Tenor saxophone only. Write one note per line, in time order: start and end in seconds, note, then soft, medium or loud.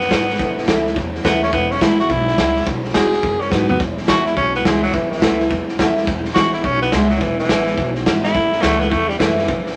0.00 0.65 B3 loud
1.25 1.42 B3 medium
1.43 1.52 C#4 medium
1.53 1.73 B3 loud
1.71 1.81 C#4 medium
1.82 1.99 E4 loud
2.00 2.12 F#4 medium
2.10 2.65 E4 loud
2.94 3.42 G#4 loud
3.41 3.53 C#4 medium
3.51 3.68 B3 medium
3.69 3.79 B3 loud
4.08 4.26 F#4 loud
4.27 4.36 E4 medium
4.37 4.54 C#4 medium
4.56 4.66 B3 medium
4.66 4.82 G#3 medium
4.83 4.96 F#3 medium
4.94 5.10 E3 medium
5.11 5.66 E3 medium
6.34 6.52 F#4 loud
6.54 6.65 E4 medium
6.64 6.81 C#4 loud
6.82 6.95 B3 loud
6.93 7.10 G#3 medium
7.10 7.23 F#3 medium
7.22 7.39 E3 medium
7.39 7.94 E3 loud
8.24 8.63 E4 loud
8.62 8.82 A3 loud
8.80 8.92 B3 medium
8.91 9.10 A3 loud
9.08 9.18 G3 medium
9.19 9.75 E3 medium